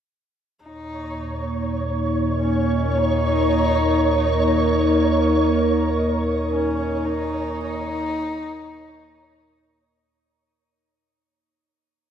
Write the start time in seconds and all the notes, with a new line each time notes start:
0.59 D#2 A#2 A#3 D#4 C#5
1.18 D#4
2.39 C#4
2.98 D#4
3.64 A#4
4.18 D#4
6.49 C#4
7.05 D#4
7.63 D#4